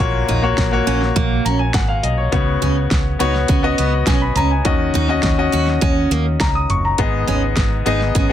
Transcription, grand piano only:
0.00 A#2 A#3 F#4 C#5
0.42 A#3 F#4 C#5
0.72 A#3 F#4 C#5
1.45 A#5
1.59 G#5
1.74 F#5
1.88 F5
2.03 D#5
2.18 C#5
2.32 C#3 B3 F#4 C#5
3.19 B3 F#4 C#5
3.63 B3 F#4 D#5
4.07 G#5
4.22 B5
4.36 A#5
4.51 G#5
4.64 D#3 C#4 F#4 D#5
5.08 C#4 F#4 D#5
5.38 C#4 F#4 D#5
6.40 A#5
6.55 D#6
6.70 C#6
6.85 A#5
6.99 G#2 B3 G#4 D#5
7.86 B3 G#4 D#5
8.29 B3

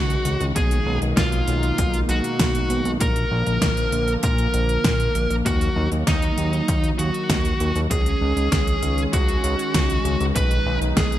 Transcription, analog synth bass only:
Already playing: C#2
0.25 C#2
0.41 C#2
0.56 B1
0.87 B1
1.02 B1
1.17 B1
1.48 B1
1.79 B1
2.09 B1
2.40 B1
2.70 B1
2.86 B1
3.01 A#1
3.31 A#1
3.47 A#1
3.62 A#1
3.93 A#1
4.24 A#2
4.54 A#1
4.85 A#2
5.15 A#1
5.31 A#1
5.46 D#2
5.76 D#2
5.92 D#2
6.07 D#2
6.38 D#2
6.68 D#2
6.99 D#2
7.30 D#2
7.60 D#2
7.76 D#2
7.91 C#2
8.21 C#2
8.37 C#2
8.52 C#2
8.83 C#2
9.13 C#2
9.44 C#2
9.75 C#2
10.05 C#2
10.21 C#2
10.36 B1
10.66 B1
10.81 B1
10.97 B1

